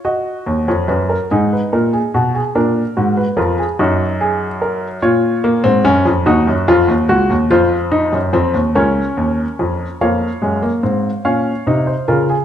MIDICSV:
0, 0, Header, 1, 2, 480
1, 0, Start_track
1, 0, Key_signature, -6, "minor"
1, 0, Tempo, 829876
1, 28, Time_signature, 6, 3, 24, 8
1, 7200, End_track
2, 0, Start_track
2, 0, Title_t, "Grand piano"
2, 0, Program_c, 0, 0
2, 27, Note_on_c, 0, 75, 62
2, 28, Note_on_c, 0, 66, 62
2, 269, Note_on_c, 0, 39, 71
2, 380, Note_off_c, 0, 75, 0
2, 387, Note_off_c, 0, 39, 0
2, 394, Note_on_c, 0, 41, 68
2, 395, Note_on_c, 0, 73, 58
2, 510, Note_off_c, 0, 41, 0
2, 510, Note_off_c, 0, 73, 0
2, 510, Note_on_c, 0, 42, 71
2, 512, Note_on_c, 0, 71, 60
2, 630, Note_off_c, 0, 71, 0
2, 633, Note_on_c, 0, 70, 61
2, 661, Note_off_c, 0, 42, 0
2, 732, Note_off_c, 0, 66, 0
2, 751, Note_off_c, 0, 70, 0
2, 760, Note_on_c, 0, 44, 73
2, 760, Note_on_c, 0, 63, 64
2, 762, Note_on_c, 0, 68, 64
2, 876, Note_off_c, 0, 68, 0
2, 883, Note_on_c, 0, 71, 58
2, 908, Note_off_c, 0, 44, 0
2, 997, Note_off_c, 0, 71, 0
2, 998, Note_on_c, 0, 46, 79
2, 1000, Note_on_c, 0, 70, 60
2, 1116, Note_off_c, 0, 70, 0
2, 1117, Note_on_c, 0, 68, 57
2, 1147, Note_off_c, 0, 46, 0
2, 1234, Note_off_c, 0, 68, 0
2, 1240, Note_on_c, 0, 47, 78
2, 1242, Note_on_c, 0, 66, 61
2, 1356, Note_off_c, 0, 66, 0
2, 1358, Note_on_c, 0, 68, 60
2, 1388, Note_off_c, 0, 47, 0
2, 1459, Note_off_c, 0, 63, 0
2, 1474, Note_off_c, 0, 68, 0
2, 1477, Note_on_c, 0, 62, 63
2, 1478, Note_on_c, 0, 46, 81
2, 1478, Note_on_c, 0, 70, 66
2, 1625, Note_off_c, 0, 62, 0
2, 1626, Note_off_c, 0, 46, 0
2, 1716, Note_on_c, 0, 66, 62
2, 1719, Note_on_c, 0, 44, 76
2, 1825, Note_off_c, 0, 70, 0
2, 1835, Note_on_c, 0, 71, 60
2, 1864, Note_off_c, 0, 66, 0
2, 1866, Note_off_c, 0, 44, 0
2, 1948, Note_on_c, 0, 41, 77
2, 1949, Note_on_c, 0, 65, 70
2, 1950, Note_on_c, 0, 70, 62
2, 1951, Note_off_c, 0, 71, 0
2, 2067, Note_off_c, 0, 70, 0
2, 2075, Note_on_c, 0, 68, 64
2, 2098, Note_off_c, 0, 41, 0
2, 2098, Note_off_c, 0, 65, 0
2, 2189, Note_off_c, 0, 68, 0
2, 2194, Note_on_c, 0, 66, 63
2, 2195, Note_on_c, 0, 42, 81
2, 2197, Note_on_c, 0, 63, 72
2, 2341, Note_off_c, 0, 66, 0
2, 2434, Note_on_c, 0, 68, 72
2, 2580, Note_off_c, 0, 68, 0
2, 2670, Note_on_c, 0, 70, 66
2, 2817, Note_off_c, 0, 70, 0
2, 2885, Note_off_c, 0, 42, 0
2, 2886, Note_off_c, 0, 63, 0
2, 2906, Note_on_c, 0, 46, 77
2, 2906, Note_on_c, 0, 73, 78
2, 2907, Note_on_c, 0, 65, 76
2, 3146, Note_on_c, 0, 58, 86
2, 3252, Note_off_c, 0, 46, 0
2, 3260, Note_off_c, 0, 58, 0
2, 3261, Note_on_c, 0, 60, 93
2, 3263, Note_on_c, 0, 44, 72
2, 3377, Note_off_c, 0, 60, 0
2, 3378, Note_off_c, 0, 44, 0
2, 3381, Note_on_c, 0, 42, 74
2, 3382, Note_on_c, 0, 61, 97
2, 3496, Note_off_c, 0, 42, 0
2, 3502, Note_on_c, 0, 41, 75
2, 3529, Note_off_c, 0, 61, 0
2, 3598, Note_off_c, 0, 65, 0
2, 3598, Note_off_c, 0, 73, 0
2, 3616, Note_off_c, 0, 41, 0
2, 3620, Note_on_c, 0, 66, 76
2, 3623, Note_on_c, 0, 63, 89
2, 3624, Note_on_c, 0, 39, 77
2, 3624, Note_on_c, 0, 75, 73
2, 3737, Note_off_c, 0, 39, 0
2, 3745, Note_on_c, 0, 42, 71
2, 3769, Note_off_c, 0, 63, 0
2, 3857, Note_off_c, 0, 42, 0
2, 3865, Note_on_c, 0, 41, 81
2, 3865, Note_on_c, 0, 65, 98
2, 3976, Note_off_c, 0, 41, 0
2, 3980, Note_on_c, 0, 39, 71
2, 4010, Note_off_c, 0, 65, 0
2, 4093, Note_off_c, 0, 66, 0
2, 4094, Note_off_c, 0, 39, 0
2, 4102, Note_on_c, 0, 37, 69
2, 4102, Note_on_c, 0, 66, 90
2, 4215, Note_off_c, 0, 37, 0
2, 4223, Note_on_c, 0, 39, 75
2, 4248, Note_off_c, 0, 66, 0
2, 4316, Note_off_c, 0, 75, 0
2, 4336, Note_off_c, 0, 39, 0
2, 4342, Note_on_c, 0, 41, 72
2, 4342, Note_on_c, 0, 65, 92
2, 4342, Note_on_c, 0, 72, 76
2, 4489, Note_off_c, 0, 65, 0
2, 4579, Note_on_c, 0, 63, 87
2, 4688, Note_off_c, 0, 41, 0
2, 4701, Note_on_c, 0, 42, 68
2, 4726, Note_off_c, 0, 63, 0
2, 4814, Note_off_c, 0, 42, 0
2, 4819, Note_on_c, 0, 41, 70
2, 4821, Note_on_c, 0, 60, 89
2, 4933, Note_off_c, 0, 41, 0
2, 4941, Note_on_c, 0, 39, 68
2, 4968, Note_off_c, 0, 60, 0
2, 5037, Note_off_c, 0, 72, 0
2, 5055, Note_off_c, 0, 39, 0
2, 5064, Note_on_c, 0, 37, 71
2, 5064, Note_on_c, 0, 61, 85
2, 5064, Note_on_c, 0, 70, 65
2, 5064, Note_on_c, 0, 73, 67
2, 5210, Note_off_c, 0, 37, 0
2, 5305, Note_on_c, 0, 39, 69
2, 5453, Note_off_c, 0, 39, 0
2, 5549, Note_on_c, 0, 41, 65
2, 5696, Note_off_c, 0, 41, 0
2, 5764, Note_off_c, 0, 70, 0
2, 5764, Note_off_c, 0, 73, 0
2, 5765, Note_off_c, 0, 61, 0
2, 5791, Note_on_c, 0, 73, 66
2, 5792, Note_on_c, 0, 41, 59
2, 5792, Note_on_c, 0, 58, 66
2, 5792, Note_on_c, 0, 77, 63
2, 5939, Note_off_c, 0, 41, 0
2, 5939, Note_off_c, 0, 58, 0
2, 6025, Note_on_c, 0, 56, 65
2, 6027, Note_on_c, 0, 42, 56
2, 6142, Note_off_c, 0, 56, 0
2, 6146, Note_on_c, 0, 58, 66
2, 6176, Note_off_c, 0, 42, 0
2, 6263, Note_off_c, 0, 58, 0
2, 6265, Note_on_c, 0, 60, 64
2, 6266, Note_on_c, 0, 44, 62
2, 6415, Note_off_c, 0, 44, 0
2, 6415, Note_off_c, 0, 60, 0
2, 6491, Note_off_c, 0, 73, 0
2, 6491, Note_off_c, 0, 77, 0
2, 6506, Note_on_c, 0, 77, 59
2, 6507, Note_on_c, 0, 46, 56
2, 6508, Note_on_c, 0, 73, 61
2, 6509, Note_on_c, 0, 61, 70
2, 6656, Note_off_c, 0, 46, 0
2, 6658, Note_off_c, 0, 61, 0
2, 6748, Note_on_c, 0, 48, 62
2, 6751, Note_on_c, 0, 63, 73
2, 6858, Note_off_c, 0, 73, 0
2, 6865, Note_on_c, 0, 72, 57
2, 6898, Note_off_c, 0, 48, 0
2, 6899, Note_off_c, 0, 63, 0
2, 6983, Note_off_c, 0, 72, 0
2, 6987, Note_on_c, 0, 65, 72
2, 6989, Note_on_c, 0, 49, 65
2, 6989, Note_on_c, 0, 70, 63
2, 7105, Note_off_c, 0, 70, 0
2, 7112, Note_on_c, 0, 68, 63
2, 7136, Note_off_c, 0, 65, 0
2, 7138, Note_off_c, 0, 49, 0
2, 7200, Note_off_c, 0, 68, 0
2, 7200, Note_off_c, 0, 77, 0
2, 7200, End_track
0, 0, End_of_file